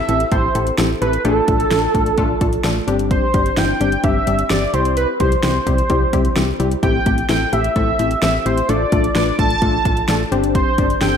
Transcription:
Already playing: analog synth lead E5
0.09 fm bass A1, analog polysynth C4 E4 G4 A4, closed hi-hat
0.20 closed hi-hat
0.32 fm bass A1, analog polysynth C4 E4 G4 A4, analog synth lead C5, kick, closed hi-hat
0.55 fm bass A1, analog polysynth C4 E4 G4 A4, closed hi-hat
0.67 closed hi-hat
0.78 fm bass A1, analog polysynth C4 E4 G4 A4, snare, closed hi-hat
1.02 fm bass A1, analog polysynth C4 E4 G4 A4, analog synth lead B4, closed hi-hat
1.13 closed hi-hat
1.25 fm bass A1, analog polysynth A3 D4 F4 A4, analog synth lead A4, closed hi-hat
1.48 fm bass A1, analog polysynth A3 D4 F4 A4, kick, closed hi-hat
1.60 closed hi-hat
1.71 fm bass A1, analog polysynth A3 D4 F4 A4, snare, closed hi-hat
1.95 fm bass A1, analog polysynth A3 D4 F4 A4, kick, closed hi-hat
2.06 closed hi-hat
2.18 fm bass A1, analog polysynth A3 D4 F4 A4, kick, closed hi-hat
2.41 fm bass A1, analog polysynth A3 D4 F4 A4, kick, closed hi-hat
2.53 closed hi-hat
2.64 fm bass A1, analog polysynth A3 D4 F4 A4, snare, closed hi-hat
2.87 fm bass G1, analog polysynth G3 C4 D4 G4, closed hi-hat
2.99 closed hi-hat
3.11 analog synth lead C5, kick, closed hi-hat
3.34 fm bass G1, analog polysynth G3 C4 D4 G4, kick, closed hi-hat
3.46 closed hi-hat
3.57 fm bass G1, analog polysynth G3 C4 D4 E4, analog synth lead G5, snare, closed hi-hat
3.81 fm bass G1, analog polysynth G3 C4 D4 G4, closed hi-hat
3.92 closed hi-hat
4.04 fm bass G1, analog polysynth G3 C4 D4 G4, analog synth lead E5, kick, closed hi-hat
4.27 fm bass G1, analog polysynth G3 C4 D4 G4, closed hi-hat
4.39 closed hi-hat
4.50 fm bass G1, analog polysynth G3 C4 D4 G4, analog synth lead D5, snare, closed hi-hat
4.74 fm bass C2, analog polysynth G3 C4 E4 G4, analog synth lead C5, closed hi-hat
4.85 closed hi-hat
4.97 analog synth lead B4, closed hi-hat
5.20 fm bass C2, analog polysynth G3 C4 E4 G4, analog synth lead C5, kick, closed hi-hat
5.32 closed hi-hat
5.43 fm bass C2, analog polysynth G3 C4 E4 G4, analog synth lead C5, snare, closed hi-hat
5.67 fm bass C2, analog polysynth G3 C4 E4 G4, kick, closed hi-hat
5.78 closed hi-hat
5.90 fm bass C2, analog polysynth G3 C4 E4 G4, kick, closed hi-hat
6.13 fm bass C2, analog polysynth G3 C4 E4 G4, kick, closed hi-hat
6.25 closed hi-hat
6.36 fm bass C2, analog polysynth G3 C4 E4 G4, snare, closed hi-hat
6.60 fm bass C2, analog polysynth G3 C4 E4 G4, closed hi-hat
6.71 closed hi-hat
6.83 fm bass A1, analog polysynth A3 C4 E4 G4, analog synth lead G5, kick, closed hi-hat
7.06 fm bass A1, analog polysynth A3 C4 E4 G4, kick, closed hi-hat
7.18 closed hi-hat
7.29 fm bass A1, analog polysynth A3 C4 E4 A4, analog synth lead G5, snare, closed hi-hat
7.53 fm bass A1, analog polysynth A3 C4 E4 G4, analog synth lead E5, closed hi-hat
7.64 closed hi-hat
7.76 fm bass A1, analog polysynth A3 C4 E4 A4, analog synth lead E5, kick, closed hi-hat
7.99 fm bass A1, analog polysynth A3 C4 E4 G4, closed hi-hat
8.11 closed hi-hat
8.22 fm bass A1, analog polysynth A3 C4 E4 G4, analog synth lead E5, snare, closed hi-hat
8.46 fm bass A1, analog polysynth A3 C4 E4 G4, analog synth lead C5, closed hi-hat
8.58 closed hi-hat
8.69 fm bass A1, analog polysynth A3 D4 F4 A4, analog synth lead D5, closed hi-hat
8.92 fm bass A1, analog polysynth A3 D4 F4 A4, kick, closed hi-hat
9.04 closed hi-hat
9.15 fm bass A1, analog polysynth A3 D4 F4 B4, analog synth lead D5, snare, closed hi-hat
9.39 fm bass A1, analog polysynth A3 D4 F4 A4, analog synth lead A5, kick, closed hi-hat
9.50 closed hi-hat
9.62 fm bass A1, analog polysynth A3 D4 F4 A4, kick, closed hi-hat
9.85 fm bass A1, analog polysynth A3 D4 F4 A4, kick, closed hi-hat
9.97 closed hi-hat
10.08 fm bass A1, analog polysynth A3 D4 F4 A4, snare, closed hi-hat
10.32 fm bass G1, analog polysynth C4 D4 G4 C5, closed hi-hat
10.44 closed hi-hat
10.55 analog synth lead C5, kick, closed hi-hat
10.78 fm bass G1, analog polysynth C4 D4 G4 D5, kick, closed hi-hat
10.90 closed hi-hat
11.01 fm bass G1, analog polysynth C4 D4 G4 A4, analog synth lead G5, snare, closed hi-hat

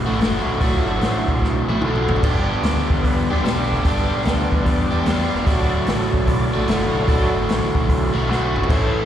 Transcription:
0.05 picked electric bass A1, overdriven electric guitar A2 D3 A3 F#4
0.10 overdriven electric guitar D2
0.19 picked electric bass F#1, overdriven electric guitar D2 A2 D3, snare, open hi-hat
0.23 overdriven electric guitar A3 F#4
0.46 picked electric bass B1
0.59 picked electric bass D1, overdriven electric guitar D2 A2 D3 A3 F#4, tonewheel organ F#3 A3 D4, kick, open hi-hat
0.74 tonewheel organ F4
0.86 picked electric bass G1, tonewheel organ A4
0.97 picked electric bass A1, tonewheel organ B4
1.01 tonewheel organ C5, snare, open hi-hat
1.26 picked electric bass B1, tonewheel organ F#3 A3 D4, kick
1.42 picked electric bass B1, kick, snare
1.68 picked electric bass B1, overdriven electric guitar D3 A3 F#4, high tom
1.72 overdriven electric guitar D2 A2
1.82 picked electric bass B1, overdriven electric guitar D2 A2 D3 A3, tonewheel organ A4, mid tom
1.86 overdriven electric guitar F#4
1.95 tonewheel organ F4, mid tom
2.08 picked electric bass G1, tonewheel organ D4, floor tom
2.16 floor tom
2.22 picked electric bass G1, overdriven electric guitar G2 D3 G3 B3 D4 G4, tonewheel organ G3 B3 D4, kick, crash
2.62 picked electric bass D2, snare, open hi-hat
2.90 picked electric bass E2, kick
3.04 picked electric bass E2, kick, open hi-hat
3.29 picked electric bass D2, overdriven electric guitar D3 G3 B3 D4 G4, tonewheel organ G3 B3 D4
3.34 overdriven electric guitar G2
3.40 picked electric bass B1, overdriven electric guitar G2, tonewheel organ F4
3.44 overdriven electric guitar D3 G3 B3 D4 G4, tonewheel organ F#4, snare, open hi-hat
3.60 tonewheel organ G4
3.71 picked electric bass E1, tonewheel organ A4, snare
3.83 picked electric bass G1, overdriven electric guitar G2 D3 G3 B3 D4 G4, tonewheel organ G3 B3 D4, kick, open hi-hat
4.00 tonewheel organ G4
4.10 picked electric bass B1
4.21 picked electric bass D2, snare, open hi-hat
4.27 snare
4.52 picked electric bass E2, kick
4.62 picked electric bass E2, tonewheel organ C#5, kick, open hi-hat
4.67 tonewheel organ D5
4.91 picked electric bass E2, overdriven electric guitar G2 D3 G3 B3 D4 G4, tonewheel organ G3 B3 D4
5.05 picked electric bass E2, overdriven electric guitar G2 D3 G3 B3 D4 G4, tonewheel organ F5, snare, open hi-hat
5.33 picked electric bass E1, snare
5.46 picked electric bass D1, overdriven electric guitar D2 A2 D3 A3 F#4, tonewheel organ F#3 A3 D4 A4 D5, kick, open hi-hat
5.86 picked electric bass A1, snare, open hi-hat
6.13 picked electric bass B1, kick
6.24 picked electric bass B1, tonewheel organ C#5, kick, open hi-hat
6.29 tonewheel organ D5
6.53 picked electric bass A1, overdriven electric guitar D2 A2 D3 A3 F#4
6.66 picked electric bass F#1, overdriven electric guitar D2 A2 D3 A3 F#4, tonewheel organ F5, snare, open hi-hat
6.95 picked electric bass B1
7.06 picked electric bass D1, overdriven electric guitar D2 A2 D3 A3 F#4, tonewheel organ F#3 A3 D4 A4 D5, kick, open hi-hat
7.36 picked electric bass G1
7.49 picked electric bass A1, snare, open hi-hat
7.75 picked electric bass B1, kick
7.88 picked electric bass B1, tonewheel organ F#3 A3 D4, kick, open hi-hat
8.11 picked electric bass B1, overdriven electric guitar A3 F#4, tonewheel organ E5
8.16 overdriven electric guitar D2 A2 D3, tonewheel organ F5
8.27 picked electric bass B1, overdriven electric guitar D2 A2 D3 A3 F#4, tonewheel organ C5
8.31 snare
8.55 picked electric bass G1, tonewheel organ A4, mid tom
8.64 tonewheel organ E3, floor tom
8.68 picked electric bass A1, overdriven electric guitar A2 E3 A3 C#4 E4 A4, tonewheel organ A3 C#4 C5, kick, crash
8.92 tonewheel organ E5
8.96 tonewheel organ F5

